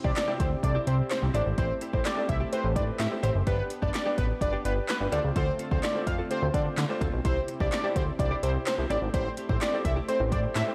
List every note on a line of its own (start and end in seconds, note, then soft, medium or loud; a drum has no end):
0.00 1.33 C3 medium
0.00 3.43 C4 medium
0.00 1.33 E4 medium
0.00 5.08 G4 medium
0.04 0.12 C2 loud
0.04 0.18 C4 medium
0.04 0.15 C4 medium
0.04 0.18 E4 medium
0.04 0.15 E4 medium
0.04 0.16 G4 medium
0.04 0.19 G4 medium
0.04 0.12 D5 medium
0.04 kick loud
0.16 0.32 D5 medium
0.16 muted clean electric guitar stroke soft
0.16 snare loud
0.16 clap loud
0.16 closed hi-hat loud
0.28 0.49 C4 medium
0.28 0.38 C4 medium
0.28 0.49 E4 medium
0.28 0.39 E4 medium
0.28 0.39 G4 medium
0.28 0.49 G4 medium
0.39 0.55 D2 medium
0.39 0.56 C4 medium
0.39 0.51 E4 medium
0.39 0.50 G4 medium
0.39 0.48 C5 medium
0.39 kick medium
0.39 closed hi-hat medium
0.51 muted clean electric guitar stroke soft
0.63 0.78 C2 loud
0.63 0.77 C4 medium
0.63 0.77 E4 medium
0.63 0.77 A4 medium
0.63 0.79 D5 medium
0.63 muted clean electric guitar stroke soft
0.63 kick medium
0.63 closed hi-hat medium
0.75 0.85 C4 medium
0.75 0.86 E4 medium
0.75 0.87 G4 medium
0.87 1.02 C2 loud
0.87 1.03 C4 medium
0.87 1.08 C4 medium
0.87 1.08 E4 medium
0.87 0.98 E4 medium
0.87 1.08 G4 medium
0.87 0.97 G4 medium
0.87 0.95 C5 medium
0.87 closed hi-hat medium
0.99 muted clean electric guitar stroke medium
1.11 1.19 C5 medium
1.11 snare loud
1.11 clap loud
1.11 closed hi-hat loud
1.22 1.30 C2 medium
1.22 1.33 C4 medium
1.22 1.33 E4 medium
1.22 1.33 G4 medium
1.22 muted clean electric guitar stroke medium
1.34 1.42 A1 loud
1.34 3.45 A3 medium
1.34 1.82 A3 medium
1.34 1.53 C4 medium
1.34 1.82 C4 medium
1.34 1.82 E4 medium
1.34 1.45 E4 loud
1.34 1.82 G4 medium
1.34 1.45 G4 loud
1.34 1.82 C5 medium
1.34 1.42 D5 medium
1.34 closed hi-hat medium
1.46 1.53 G#1 loud
1.46 muted clean electric guitar stroke soft
1.58 1.73 A1 loud
1.58 1.77 C4 medium
1.58 1.69 E4 medium
1.58 1.68 G4 loud
1.58 1.74 C5 loud
1.58 kick loud
1.58 closed hi-hat medium
1.69 muted clean electric guitar stroke soft
1.81 1.93 C4 medium
1.81 1.92 E4 medium
1.81 1.92 G4 medium
1.81 closed hi-hat medium
1.93 2.01 A1 loud
1.93 2.07 A3 medium
1.93 2.07 C4 medium
1.93 2.03 C4 medium
1.93 2.07 E4 medium
1.93 2.04 E4 medium
1.93 2.05 G4 medium
1.93 2.07 G4 medium
1.93 2.01 C5 medium
1.93 2.08 C5 medium
1.93 kick medium
2.05 2.24 C4 medium
2.05 2.16 E4 medium
2.05 2.15 G4 medium
2.05 2.21 D5 medium
2.05 snare loud
2.05 clap loud
2.05 closed hi-hat loud
2.17 2.38 A3 medium
2.17 2.38 C4 medium
2.17 2.38 E4 medium
2.17 2.38 G4 medium
2.17 2.38 C5 medium
2.17 muted clean electric guitar stroke medium
2.29 2.44 C2 medium
2.29 2.37 E5 medium
2.29 kick medium
2.29 closed hi-hat medium
2.40 2.51 C4 medium
2.40 2.51 E4 medium
2.40 2.52 G4 medium
2.52 2.66 A3 medium
2.52 2.66 C4 medium
2.52 2.66 E4 medium
2.52 2.67 G4 medium
2.52 2.67 B4 medium
2.52 2.68 C5 medium
2.52 muted clean electric guitar stroke soft
2.52 closed hi-hat medium
2.64 2.77 A1 loud
2.64 muted clean electric guitar stroke soft
2.76 2.91 A2 loud
2.76 2.97 A3 medium
2.76 2.97 C4 medium
2.76 2.97 E4 medium
2.76 2.97 G4 medium
2.76 2.97 B4 medium
2.76 2.84 D5 medium
2.76 kick medium
2.76 closed hi-hat medium
2.88 muted clean electric guitar stroke soft
2.99 3.07 A2 loud
2.99 3.08 E5 medium
2.99 muted clean electric guitar stroke soft
2.99 snare loud
2.99 clap loud
2.99 closed hi-hat loud
3.11 3.32 A3 medium
3.11 3.32 C4 medium
3.11 3.32 E4 medium
3.11 3.32 G4 medium
3.11 3.33 C5 medium
3.11 muted clean electric guitar stroke soft
3.23 3.31 A1 loud
3.23 3.42 C4 medium
3.23 3.34 E4 medium
3.23 3.34 G4 loud
3.23 3.31 C5 medium
3.23 closed hi-hat medium
3.35 3.43 F#1 loud
3.35 muted clean electric guitar stroke soft
3.46 3.62 G1 loud
3.46 3.66 B3 medium
3.46 5.11 B3 medium
3.46 3.68 D4 medium
3.46 5.11 D4 medium
3.46 3.58 D4 loud
3.46 3.68 G4 medium
3.46 3.57 G4 loud
3.46 3.63 B4 loud
3.46 3.68 B4 medium
3.46 kick loud
3.46 closed hi-hat medium
3.58 muted clean electric guitar stroke medium
3.70 muted clean electric guitar stroke soft
3.70 closed hi-hat medium
3.82 3.90 G1 loud
3.82 3.93 B3 medium
3.82 3.96 D4 medium
3.82 3.93 D4 medium
3.82 3.93 G4 medium
3.82 3.96 G4 medium
3.82 3.96 B4 medium
3.82 3.90 D5 medium
3.82 kick loud
3.94 4.10 D5 medium
3.94 muted clean electric guitar stroke soft
3.94 snare medium
3.94 clap loud
3.94 closed hi-hat loud
4.06 4.16 B3 medium
4.06 4.27 D4 medium
4.06 4.17 D4 medium
4.06 4.17 G4 loud
4.06 4.27 G4 medium
4.06 4.27 B4 medium
4.17 4.33 A1 loud
4.17 4.34 B3 medium
4.17 4.29 D4 medium
4.17 4.28 G4 medium
4.17 4.26 B4 medium
4.17 kick medium
4.17 closed hi-hat medium
4.29 muted clean electric guitar stroke medium
4.41 4.56 G1 loud
4.41 4.55 D4 medium
4.41 4.55 G4 medium
4.41 4.56 B4 medium
4.41 4.57 D5 medium
4.41 muted clean electric guitar stroke soft
4.41 kick medium
4.41 closed hi-hat medium
4.53 4.63 B3 medium
4.53 4.64 D4 medium
4.53 4.65 G4 medium
4.65 4.80 G1 loud
4.65 4.81 B3 medium
4.65 4.86 D4 medium
4.65 4.76 D4 medium
4.65 4.86 G4 medium
4.65 4.75 G4 medium
4.65 4.73 B4 medium
4.65 4.86 B4 medium
4.65 closed hi-hat medium
4.76 muted clean electric guitar stroke medium
4.89 4.97 B4 medium
4.89 snare loud
4.89 clap loud
4.89 closed hi-hat loud
5.00 5.08 G1 medium
5.00 5.11 D4 medium
5.00 5.12 G4 medium
5.00 5.12 B4 medium
5.00 muted clean electric guitar stroke medium
5.12 5.20 D2 loud
5.12 7.23 D3 medium
5.12 5.60 A3 medium
5.12 7.23 A3 medium
5.12 5.31 C4 medium
5.12 5.60 C4 medium
5.12 8.87 C4 medium
5.12 5.60 D4 medium
5.12 7.23 F4 loud
5.12 5.24 F4 medium
5.12 5.60 F4 medium
5.12 5.23 A4 loud
5.12 5.60 C5 medium
5.12 5.20 D5 medium
5.12 closed hi-hat medium
5.24 5.31 C#2 medium
5.24 muted clean electric guitar stroke soft
5.36 5.51 D2 loud
5.36 5.55 C4 medium
5.36 5.47 F4 medium
5.36 5.46 A4 loud
5.36 5.52 C5 loud
5.36 kick loud
5.36 closed hi-hat medium
5.48 muted clean electric guitar stroke medium
5.59 5.71 C4 medium
5.59 5.71 F4 medium
5.59 5.70 A4 medium
5.59 closed hi-hat medium
5.71 5.79 D2 loud
5.71 5.85 A3 medium
5.71 5.85 C4 medium
5.71 5.82 C4 medium
5.71 5.85 D4 medium
5.71 5.85 F4 medium
5.71 5.82 F4 medium
5.71 5.83 A4 medium
5.71 5.79 C5 medium
5.71 5.85 C5 medium
5.71 kick medium
5.83 6.02 C4 medium
5.83 5.94 F4 medium
5.83 5.94 A4 loud
5.83 5.99 D5 medium
5.83 snare loud
5.83 clap loud
5.83 closed hi-hat loud
5.95 6.16 A3 medium
5.95 6.16 C4 medium
5.95 6.16 D4 medium
5.95 6.16 F4 medium
5.95 6.16 C5 medium
5.95 muted clean electric guitar stroke soft
6.07 6.22 F2 medium
6.07 6.15 F5 medium
6.07 muted clean electric guitar stroke soft
6.07 kick medium
6.07 closed hi-hat medium
6.18 6.29 C4 medium
6.18 6.30 F4 medium
6.18 6.30 A4 medium
6.30 6.44 A3 medium
6.30 6.44 C4 medium
6.30 6.44 D4 medium
6.30 6.44 F4 medium
6.30 6.45 G4 medium
6.30 6.46 C5 medium
6.30 muted clean electric guitar stroke soft
6.30 closed hi-hat medium
6.42 6.50 D2 loud
6.42 muted clean electric guitar stroke soft
6.54 6.69 D3 loud
6.54 6.75 A3 medium
6.54 6.75 C4 medium
6.54 6.75 D4 medium
6.54 6.75 F4 medium
6.54 6.75 C5 medium
6.54 6.62 D5 medium
6.54 kick loud
6.54 closed hi-hat medium
6.66 muted clean electric guitar stroke soft
6.77 6.85 D3 loud
6.77 muted clean electric guitar stroke soft
6.77 snare loud
6.77 clap loud
6.77 closed hi-hat loud
6.89 7.10 A3 loud
6.89 7.10 C4 medium
6.89 7.10 D4 medium
6.89 7.10 F4 medium
6.89 7.10 C5 loud
6.89 muted clean electric guitar stroke medium
7.01 7.09 D2 loud
7.01 7.20 C4 medium
7.01 7.13 F4 loud
7.01 7.12 A4 loud
7.01 kick medium
7.01 closed hi-hat medium
7.13 7.20 B1 medium
7.13 muted clean electric guitar stroke soft
7.25 7.40 C2 loud
7.25 8.89 C3 medium
7.25 7.44 C4 medium
7.25 7.46 E4 medium
7.25 8.89 E4 medium
7.25 7.36 E4 medium
7.25 10.75 G4 medium
7.25 7.46 G4 medium
7.25 7.35 G4 loud
7.25 7.41 C5 loud
7.25 7.46 C5 medium
7.25 kick loud
7.25 closed hi-hat medium
7.37 muted clean electric guitar stroke soft
7.48 muted clean electric guitar stroke medium
7.48 closed hi-hat medium
7.60 7.68 C2 loud
7.60 7.71 C4 medium
7.60 7.74 E4 medium
7.60 7.71 E4 medium
7.60 7.72 G4 medium
7.60 7.74 G4 medium
7.60 7.74 C5 medium
7.60 7.68 D5 medium
7.60 kick loud
7.72 7.88 D5 medium
7.72 muted clean electric guitar stroke soft
7.72 snare medium
7.72 clap loud
7.72 closed hi-hat loud
7.84 7.94 C4 medium
7.84 8.05 E4 medium
7.84 7.95 E4 medium
7.84 7.95 G4 medium
7.84 8.05 G4 medium
7.84 8.05 C5 medium
7.96 8.11 D2 medium
7.96 8.12 C4 medium
7.96 8.07 E4 medium
7.96 8.06 G4 medium
7.96 8.04 C5 medium
7.96 kick medium
7.96 closed hi-hat medium
8.07 muted clean electric guitar stroke soft
8.19 8.34 C2 loud
8.19 8.33 E4 medium
8.19 8.33 G4 medium
8.19 8.33 C5 medium
8.19 8.35 D5 medium
8.19 muted clean electric guitar stroke soft
8.19 kick medium
8.19 closed hi-hat medium
8.31 8.42 C4 medium
8.31 8.42 E4 medium
8.31 8.43 G4 medium
8.43 8.58 C2 loud
8.43 8.59 C4 medium
8.43 8.64 E4 medium
8.43 8.54 E4 medium
8.43 8.64 G4 medium
8.43 8.54 G4 medium
8.43 8.51 C5 medium
8.43 8.64 C5 medium
8.43 closed hi-hat medium
8.55 muted clean electric guitar stroke soft
8.67 8.75 C5 medium
8.67 snare loud
8.67 clap loud
8.67 closed hi-hat loud
8.78 8.86 C2 medium
8.78 8.89 E4 medium
8.78 8.89 G4 medium
8.78 8.89 C5 medium
8.78 muted clean electric guitar stroke soft
8.90 8.98 A1 loud
8.90 9.37 A3 medium
8.90 10.75 A3 medium
8.90 9.09 C4 loud
8.90 9.37 C4 medium
8.90 10.75 C4 medium
8.90 9.38 E4 medium
8.90 9.02 E4 loud
8.90 9.38 G4 medium
8.90 9.01 G4 loud
8.90 9.38 C5 medium
8.90 8.98 D5 medium
8.90 closed hi-hat medium
9.02 9.09 G#1 medium
9.02 muted clean electric guitar stroke soft
9.14 9.29 A1 loud
9.14 9.33 C4 loud
9.14 9.25 E4 loud
9.14 9.24 G4 loud
9.14 9.30 C5 loud
9.14 kick loud
9.14 closed hi-hat medium
9.25 muted clean electric guitar stroke medium
9.37 9.49 C4 medium
9.37 9.48 E4 medium
9.37 9.48 G4 medium
9.37 closed hi-hat medium
9.49 9.57 A1 loud
9.49 9.63 A3 medium
9.49 9.63 C4 medium
9.49 9.59 C4 medium
9.49 9.63 E4 medium
9.49 9.60 E4 medium
9.49 9.61 G4 medium
9.49 9.63 G4 medium
9.49 9.57 C5 medium
9.49 9.63 C5 medium
9.49 kick loud
9.61 9.80 C4 medium
9.61 9.72 E4 medium
9.61 9.71 G4 loud
9.61 9.77 D5 medium
9.61 snare loud
9.61 clap loud
9.61 closed hi-hat loud
9.73 9.94 A3 medium
9.73 9.94 C4 medium
9.73 9.94 E4 medium
9.73 9.94 G4 medium
9.73 9.94 C5 medium
9.73 muted clean electric guitar stroke medium
9.84 10.00 C2 medium
9.84 9.93 E5 medium
9.84 muted clean electric guitar stroke soft
9.84 kick medium
9.84 closed hi-hat medium
9.96 10.07 C4 medium
9.96 10.07 E4 medium
9.96 10.08 G4 medium
10.08 10.22 A3 medium
10.08 10.22 C4 medium
10.08 10.22 E4 medium
10.08 10.22 G4 medium
10.08 10.24 C5 medium
10.08 10.22 C5 medium
10.08 muted clean electric guitar stroke soft
10.08 closed hi-hat medium
10.20 10.33 A1 loud
10.20 muted clean electric guitar stroke medium
10.32 10.47 A2 loud
10.32 10.53 A3 medium
10.32 10.53 C4 medium
10.32 10.53 E4 medium
10.32 10.53 G4 medium
10.32 10.53 C5 medium
10.32 10.40 D5 medium
10.32 kick medium
10.32 closed hi-hat medium
10.44 muted clean electric guitar stroke soft
10.55 10.63 A2 loud
10.55 10.63 E5 medium
10.55 muted clean electric guitar stroke soft
10.55 snare loud
10.55 clap loud
10.55 closed hi-hat loud
10.67 10.75 A3 medium
10.67 10.75 C4 medium
10.67 10.75 E4 medium
10.67 10.75 G4 medium
10.67 10.75 C5 medium
10.67 muted clean electric guitar stroke soft